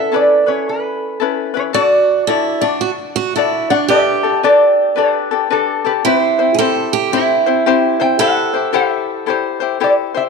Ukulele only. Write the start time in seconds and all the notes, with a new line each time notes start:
Already playing: C#4 E4 A4 B4
0.12 C#4 E4 A4 B4
0.46 C#4 E4 B4
1.20 C#4 E4 A4 B4
1.54 C#4 E4 B4
1.73 D4 F#4 A4 D5
2.27 D4 F#4 A4 D5
2.61 D4 F#4 D5
3.36 D4 F#4 A4 D5
3.70 D4 F#4 D5
3.90 D4 G4 A4 B4
4.23 D4 G4 A4
4.43 D4 G4 A4 B4
4.96 D4 G4 A4 B4
5.31 D4 G4 A4
5.50 D4 G4 A4 B4
5.84 D4 G4 A4
6.05 C4 E4 G4 C5
6.39 C4 E4 C5
6.59 C4 E4 G4 C5
7.12 C4 E4 G4 C5
7.46 C4 E4 C5
7.66 C4 E4 G4 C5
8.00 C4 E4 C5
8.19 E4 G4 A4 C5
8.54 E4 G4 C5
8.73 E4 G4 A4 C5
9.26 E4 G4 A4 C5
9.60 E4 G4 C5
9.80 E4 G4 A4 C5
10.14 E4 G4 C5